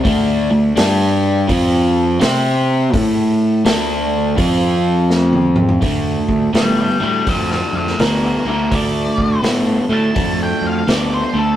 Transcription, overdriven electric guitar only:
X:1
M:4/4
L:1/8
Q:"Swing" 1/4=83
K:Dm
V:1 name="Overdriven electric guitar"
[D,A,D] [D,A,] [G,DG]2 [F,CF]2 [CGc]2 | [A,EA]2 [D,A,D]2 [F,CF]4 | [D,A,]2 [D,=B,] [D,A,] [D,A,]2 [D,B,] [D,A,] | [D,A,]2 [D,=B,] [D,A,] [D,A,]2 [D,B,] [D,A,] |]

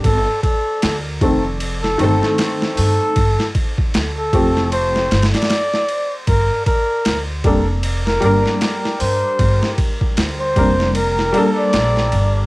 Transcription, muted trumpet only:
X:1
M:4/4
L:1/16
Q:"Swing 16ths" 1/4=77
K:Gm
V:1 name="Muted trumpet"
A2 A3 z4 A3 z2 A2- | A2 z3 A3 c3 d4 z | B2 B3 z4 B3 z2 c2- | c2 z3 c3 B3 d4 z |]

